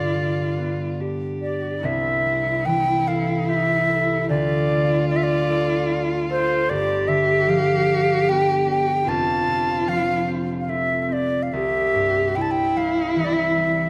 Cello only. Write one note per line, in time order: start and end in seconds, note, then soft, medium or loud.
0.00 1.02 F4 medium
1.00 1.81 G4 medium
1.82 4.29 E4 medium
4.28 6.71 F4 loud
6.69 9.06 G4 loud
9.05 11.09 F4 medium
11.53 12.38 G4 loud
12.36 13.90 E4 loud